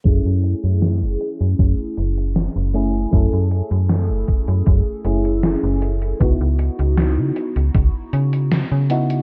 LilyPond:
<<
  \new Staff \with { instrumentName = "FM electric piano" } { \time 4/4 \key fis \dorian \tempo 4 = 78 <a cis' e' gis'>2.~ <a cis' e' gis'>8 <a cis' e' gis'>8 | <a cis' e' a'>2~ <a cis' e' a'>8 <a cis' e' gis'>8 <a cis' e' gis'>4 | <b dis' e' fis'>2.~ <b dis' e' fis'>8 <b dis' e' fis'>8 | }
  \new Staff \with { instrumentName = "FM bass" } { \clef bass \time 4/4 \key fis \dorian fis,16 fis,8 fis,8 fis,,16 r16 fis,16 fis,16 r16 fis,,8. fis,,8. | fis,16 fis,8 fis,8 fis,,16 r16 fis,16 fis,16 r16 fis,,8. fis,,8. | cis,16 cis,8 cis,8 cis16 r16 cis,16 cis,16 r16 cis8. cis8. | }
  \new DrumStaff \with { instrumentName = "Drums" } \drummode { \time 4/4 <hh bd>8 hh16 hh16 <hh sn>8 hh16 hh16 <hh bd>8 hh16 hh16 <hh sn>8 hh16 hh16 | <hh bd>8 hh16 hh16 <hh sn>8 <hh bd>16 hh16 <hh bd>8 hh16 hh16 <hh sn>8 hh16 hh16 | <hh bd>8 hh16 hh16 <hh sn>8 hh16 hh16 <hh bd>8 hh16 hh16 <hh sn>8 hh16 hh16 | }
>>